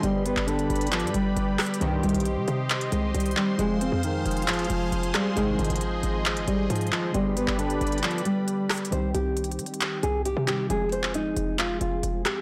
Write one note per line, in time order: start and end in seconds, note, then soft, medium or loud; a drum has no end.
0.00 0.35 G1 loud
0.00 1.76 D3 medium
0.00 1.77 G3 medium
0.00 0.23 G3 loud
0.00 1.77 B3 medium
0.00 3.55 G4 medium
0.00 1.78 G4 medium
0.00 1.79 B4 medium
0.00 1.79 D5 medium
0.00 1.79 B5 loud
0.00 closed hi-hat medium
0.26 0.45 B3 medium
0.26 closed hi-hat medium
0.37 0.69 G1 loud
0.37 clap medium
0.47 0.89 D3 loud
0.47 closed hi-hat medium
0.59 closed hi-hat soft
0.70 1.05 G1 loud
0.70 closed hi-hat medium
0.76 closed hi-hat medium
0.81 closed hi-hat medium
0.87 closed hi-hat medium
0.92 1.11 F3 medium
0.92 clap loud
0.92 closed hi-hat medium
1.00 1.14 G2 loud
1.00 closed hi-hat medium
1.07 closed hi-hat medium
1.14 1.36 G1 loud
1.14 1.77 G3 medium
1.14 closed hi-hat medium
1.37 1.58 G1 loud
1.37 closed hi-hat medium
1.59 cross-stick medium
1.59 clap medium
1.59 closed hi-hat medium
1.59 open hi-hat medium
1.66 closed hi-hat medium
1.74 closed hi-hat medium
1.79 2.02 C2 loud
1.79 2.23 C2 loud
1.79 2.23 G2 loud
1.79 3.33 D#3 medium
1.79 2.23 D#3 loud
1.79 3.33 G3 medium
1.79 2.00 C4 medium
1.79 3.34 C4 medium
1.79 3.35 G4 medium
1.79 7.10 C5 medium
1.79 3.57 D#5 medium
1.79 7.10 C6 medium
1.79 closed hi-hat medium
2.03 2.14 C2 loud
2.03 2.88 G3 medium
2.03 closed hi-hat medium
2.09 closed hi-hat medium
2.15 2.38 B1 loud
2.15 closed hi-hat medium
2.20 closed hi-hat medium
2.25 closed hi-hat medium
2.37 2.47 C3 loud
2.48 2.91 C3 loud
2.48 closed hi-hat medium
2.70 clap loud
2.70 closed hi-hat soft
2.81 closed hi-hat medium
2.92 3.14 C2 loud
2.92 3.11 G#3 medium
2.92 closed hi-hat medium
3.14 3.36 C2 loud
3.14 3.34 G3 medium
3.14 closed hi-hat medium
3.20 closed hi-hat medium
3.26 closed hi-hat medium
3.31 closed hi-hat soft
3.36 3.59 D#3 soft
3.36 3.56 G3 medium
3.36 3.59 G3 soft
3.36 3.59 C4 soft
3.36 3.59 G4 medium
3.36 clap medium
3.58 3.91 F1 loud
3.58 5.32 F3 medium
3.58 5.33 G#3 medium
3.58 3.78 G#3 loud
3.58 5.34 C4 medium
3.58 7.11 G#4 medium
3.58 5.34 G#4 medium
3.58 5.35 F5 medium
3.58 closed hi-hat medium
3.81 4.00 C4 medium
3.81 closed hi-hat medium
3.92 4.24 F2 loud
4.03 4.45 D#3 medium
4.03 closed hi-hat medium
4.26 4.68 F1 loud
4.26 closed hi-hat medium
4.31 closed hi-hat medium
4.37 closed hi-hat medium
4.42 closed hi-hat medium
4.48 4.67 F3 medium
4.48 clap loud
4.48 closed hi-hat medium
4.53 closed hi-hat medium
4.59 closed hi-hat medium
4.64 closed hi-hat soft
4.70 4.91 F1 loud
4.70 5.12 F3 medium
4.70 closed hi-hat medium
4.92 5.14 F1 loud
4.92 closed hi-hat medium
5.03 closed hi-hat medium
5.14 5.34 G3 medium
5.14 cross-stick medium
5.14 clap medium
5.14 closed hi-hat medium
5.35 5.58 G#1 loud
5.35 5.79 C2 loud
5.35 5.79 G#2 loud
5.35 7.10 D#3 medium
5.35 5.79 D#3 loud
5.35 7.11 G#3 medium
5.35 5.56 G#3 medium
5.35 7.11 C4 medium
5.35 7.12 G#4 medium
5.35 7.13 D#5 medium
5.35 closed hi-hat medium
5.59 5.70 G#1 loud
5.59 6.44 F3 medium
5.59 closed hi-hat soft
5.64 closed hi-hat medium
5.70 6.02 G#1 loud
5.70 closed hi-hat medium
5.76 closed hi-hat medium
5.81 closed hi-hat medium
6.03 6.38 G#1 loud
6.03 closed hi-hat medium
6.26 clap loud
6.26 closed hi-hat soft
6.37 6.47 G1 loud
6.37 closed hi-hat medium
6.48 6.69 G#1 loud
6.48 6.67 G3 medium
6.48 closed hi-hat medium
6.70 6.91 G#2 loud
6.70 6.89 F3 medium
6.70 closed hi-hat medium
6.76 closed hi-hat medium
6.81 closed hi-hat medium
6.87 closed hi-hat medium
6.92 7.11 F3 medium
6.92 clap medium
7.12 7.46 G1 loud
7.12 8.87 D3 medium
7.12 8.88 G3 medium
7.12 7.34 G3 loud
7.12 8.88 B3 medium
7.12 8.91 G4 medium
7.12 8.89 G4 medium
7.12 8.91 B4 medium
7.12 8.91 D5 medium
7.12 8.91 B5 medium
7.12 closed hi-hat medium
7.37 7.56 B3 medium
7.37 closed hi-hat medium
7.48 7.80 G1 loud
7.48 clap medium
7.58 8.00 D3 medium
7.58 closed hi-hat medium
7.70 closed hi-hat soft
7.81 8.03 G1 loud
7.81 closed hi-hat medium
7.87 closed hi-hat medium
7.92 closed hi-hat medium
7.98 closed hi-hat medium
8.03 8.22 F3 medium
8.03 clap loud
8.03 closed hi-hat medium
8.11 closed hi-hat medium
8.18 closed hi-hat medium
8.25 8.88 G3 medium
8.25 closed hi-hat medium
8.48 closed hi-hat medium
8.70 cross-stick medium
8.70 clap medium
8.70 closed hi-hat soft
8.70 open hi-hat medium
8.77 closed hi-hat medium
8.85 closed hi-hat medium
8.91 9.14 C2 loud
8.91 10.44 D#3 medium
8.91 10.44 G3 medium
8.91 10.45 C4 medium
8.91 10.46 G4 medium
8.91 9.11 C5 medium
8.91 closed hi-hat medium
9.14 9.60 C2 loud
9.14 9.99 G4 medium
9.14 closed hi-hat medium
9.37 closed hi-hat medium
9.44 closed hi-hat medium
9.52 closed hi-hat medium
9.59 9.69 G3 loud
9.59 closed hi-hat medium
9.66 closed hi-hat medium
9.74 closed hi-hat medium
9.81 clap loud
9.81 closed hi-hat medium
10.03 10.35 C2 loud
10.03 10.22 G#4 medium
10.03 closed hi-hat medium
10.25 10.45 G4 medium
10.25 closed hi-hat medium
10.37 10.69 C3 loud
10.47 10.70 D#3 soft
10.47 10.70 G3 soft
10.47 10.70 C4 soft
10.47 10.67 G4 medium
10.47 10.71 G4 medium
10.47 clap medium
10.47 closed hi-hat medium
10.69 11.34 F1 loud
10.69 12.42 F3 medium
10.69 12.42 G#3 medium
10.69 12.42 C4 medium
10.69 10.89 G#4 loud
10.69 12.42 G#4 medium
10.69 closed hi-hat medium
10.92 11.11 C5 medium
10.92 closed hi-hat medium
11.03 clap medium
11.14 11.57 D#4 medium
11.14 closed hi-hat medium
11.37 11.79 F1 loud
11.37 closed hi-hat medium
11.59 11.78 F4 medium
11.59 clap loud
11.59 closed hi-hat medium
11.81 12.02 F1 loud
11.81 12.23 F4 medium
11.81 closed hi-hat medium
12.03 12.25 F1 loud
12.03 closed hi-hat medium
12.26 12.42 G4 medium
12.26 cross-stick medium
12.26 clap medium
12.26 closed hi-hat medium